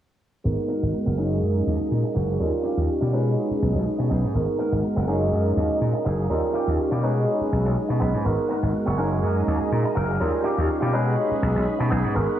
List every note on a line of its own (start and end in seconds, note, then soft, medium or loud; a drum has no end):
0.44 0.55 G#1 medium
0.44 1.13 G#3 medium
0.44 1.13 B3 medium
0.44 1.13 D#4 medium
0.44 1.14 F#4 medium
0.44 1.17 A#4 medium
0.44 1.14 A#4 medium
0.44 1.17 F#5 medium
0.68 0.82 B3 loud
0.68 0.82 F#4 medium
0.68 0.82 A#4 loud
0.82 0.92 G#1 medium
0.93 muted clean electric guitar stroke soft
1.06 1.39 F#1 medium
1.06 1.17 B3 medium
1.06 1.18 F#4 medium
1.06 1.18 A#4 medium
1.17 2.35 G#3 medium
1.17 1.86 A#3 medium
1.17 2.35 C#4 medium
1.17 2.35 D#4 medium
1.17 1.87 D#4 medium
1.17 2.36 F#4 medium
1.17 2.39 G#4 medium
1.17 1.87 G#4 medium
1.17 2.36 A#4 loud
1.17 2.39 D#5 medium
1.17 2.39 A#5 medium
1.42 1.63 F#2 medium
1.67 1.77 D#2 loud
1.79 muted slap bass stroke soft
1.91 2.02 A#2 medium
2.03 muted clean electric guitar stroke medium
2.14 2.36 F#1 loud
2.14 2.39 A#3 loud
2.14 2.40 D#4 medium
2.14 2.40 F#4 loud
2.39 2.51 D#2 medium
2.39 3.08 G3 medium
2.39 3.08 C#4 medium
2.39 3.09 D#4 medium
2.39 3.09 F4 medium
2.39 3.12 G4 medium
2.39 3.09 A#4 medium
2.39 3.12 F5 medium
2.39 3.13 C#6 medium
2.63 2.77 C#4 loud
2.63 2.77 F4 loud
2.63 2.78 G4 loud
2.77 2.87 D#2 medium
2.88 muted clean electric guitar stroke soft
3.01 3.34 B2 medium
3.01 3.11 C#4 medium
3.01 3.12 F4 medium
3.01 3.13 G4 medium
3.12 4.30 G#3 medium
3.12 3.81 B3 medium
3.12 4.30 C#4 medium
3.12 3.82 D#4 medium
3.12 4.31 D#4 medium
3.12 4.31 F#4 medium
3.12 4.34 G#4 medium
3.12 3.82 G#4 medium
3.12 4.31 B4 loud
3.12 4.34 D#5 medium
3.50 muted slap bass stroke soft
3.62 3.73 B1 medium
3.75 3.84 B1 medium
3.98 4.09 B2 medium
3.98 muted clean electric guitar stroke medium
4.10 4.21 B1 medium
4.10 4.35 B3 loud
4.10 4.35 D#4 loud
4.10 4.35 G#4 loud
4.24 4.33 G#2 medium
4.34 4.45 G#1 medium
4.34 5.03 G#3 medium
4.34 5.03 B3 medium
4.34 5.04 D#4 medium
4.34 5.04 F#4 medium
4.34 5.07 A#4 medium
4.34 5.04 A#4 medium
4.34 5.07 F#5 medium
4.59 4.72 B3 loud
4.59 4.72 F#4 loud
4.59 4.73 A#4 loud
4.72 4.82 G#1 medium
4.83 muted clean electric guitar stroke soft
4.96 5.29 F#1 medium
4.96 5.07 B3 medium
4.96 5.08 F#4 medium
4.96 5.08 A#4 medium
5.07 6.25 G#3 medium
5.07 5.76 A#3 medium
5.07 6.25 C#4 medium
5.07 5.77 D#4 medium
5.07 6.26 D#4 medium
5.07 6.26 F#4 medium
5.07 6.29 G#4 medium
5.07 5.77 G#4 medium
5.07 6.26 A#4 loud
5.07 6.29 D#5 medium
5.07 6.29 A#5 medium
5.32 5.53 F#2 medium
5.56 5.67 D#2 loud
5.70 muted slap bass stroke soft
5.81 5.92 A#2 medium
5.93 muted clean electric guitar stroke medium
6.05 6.26 F#1 loud
6.05 6.30 A#3 loud
6.05 6.30 D#4 loud
6.05 6.31 G#4 loud
6.29 6.41 D#2 medium
6.29 6.98 G3 medium
6.29 6.98 C#4 medium
6.29 6.99 D#4 medium
6.29 6.99 F4 medium
6.29 7.03 G4 medium
6.29 6.99 A#4 medium
6.29 7.03 F5 medium
6.29 7.02 C#6 medium
6.53 6.67 C#4 loud
6.53 6.67 F4 medium
6.53 6.68 G4 loud
6.67 6.77 D#2 medium
6.78 muted clean electric guitar stroke soft
6.91 7.24 B2 medium
6.91 7.02 C#4 medium
6.91 7.03 F4 medium
6.91 7.04 G4 medium
7.02 8.20 G#3 medium
7.02 7.71 B3 medium
7.02 8.20 C#4 medium
7.02 7.72 D#4 medium
7.02 8.21 D#4 medium
7.02 8.21 F#4 medium
7.02 8.24 G#4 medium
7.02 7.72 G#4 medium
7.02 8.21 B4 medium
7.02 8.24 D#5 medium
7.41 muted slap bass stroke soft
7.52 7.63 B1 medium
7.65 7.75 B1 medium
7.89 7.99 B2 medium
7.89 muted clean electric guitar stroke medium
8.00 8.12 B1 medium
8.00 8.25 B3 loud
8.00 8.25 D#4 loud
8.00 8.26 B4 loud
8.14 8.23 G#2 medium
8.24 8.36 G#1 medium
8.24 8.93 G#3 medium
8.24 8.94 B3 medium
8.24 8.94 D#4 medium
8.24 8.94 F#4 medium
8.24 8.98 A#4 medium
8.24 8.94 A#4 medium
8.24 8.98 F#5 medium
8.49 8.62 B3 loud
8.49 8.63 F#4 loud
8.49 8.63 A#4 loud
8.62 8.72 G#1 medium
8.73 muted clean electric guitar stroke soft
8.86 9.20 F#1 medium
8.86 8.98 B3 medium
8.86 8.98 F#4 medium
8.86 8.99 C#5 medium
8.97 10.15 G#3 medium
8.97 9.66 A#3 medium
8.97 10.16 C#4 medium
8.97 9.67 D#4 medium
8.97 10.16 D#4 medium
8.97 10.16 F#4 medium
8.97 10.19 G#4 medium
8.97 9.67 G#4 loud
8.97 10.16 A#4 loud
8.97 10.19 D#5 medium
8.97 10.19 A#5 medium
9.23 9.43 F#2 medium
9.47 9.58 D#2 loud
9.60 muted slap bass stroke soft
9.72 9.82 A#2 medium
9.84 muted clean electric guitar stroke medium
9.95 10.17 F#1 loud
9.95 10.20 A#3 loud
9.95 10.20 D#4 loud
9.95 10.21 A#4 loud
10.20 10.31 D#2 medium
10.20 10.89 G3 medium
10.20 10.89 C#4 medium
10.20 10.89 D#4 medium
10.20 10.89 F4 medium
10.20 10.93 G4 medium
10.20 10.89 A#4 medium
10.20 10.93 F5 medium
10.20 10.93 C#6 medium
10.44 10.57 C#4 loud
10.44 10.58 F4 loud
10.44 10.58 G4 loud
10.58 10.67 D#2 medium
10.68 muted clean electric guitar stroke soft
10.81 11.15 B2 medium
10.81 10.92 C#4 medium
10.81 10.93 F4 medium
10.81 10.94 G4 loud
10.93 12.10 G#3 medium
10.93 11.62 B3 medium
10.93 12.11 C#4 medium
10.93 11.62 D#4 medium
10.93 12.11 D#4 medium
10.93 12.11 F#4 medium
10.93 12.14 G#4 medium
10.93 11.62 G#4 medium
10.93 12.11 B4 loud
10.93 12.14 D#5 medium
10.93 12.14 B5 medium
11.31 muted slap bass stroke soft
11.42 11.53 B1 medium
11.55 11.65 B1 medium
11.79 11.89 B2 medium
11.79 muted clean electric guitar stroke medium
11.90 12.02 B1 medium
11.90 12.15 B3 loud
11.90 12.15 D#4 loud
11.90 12.16 G#4 loud
12.04 12.14 G#2 medium
12.14 12.26 G#1 medium
12.14 12.40 G#3 medium
12.14 12.40 B3 medium
12.14 12.40 D#4 medium
12.14 12.40 F#4 medium
12.14 12.40 A#4 medium
12.14 12.40 F#5 medium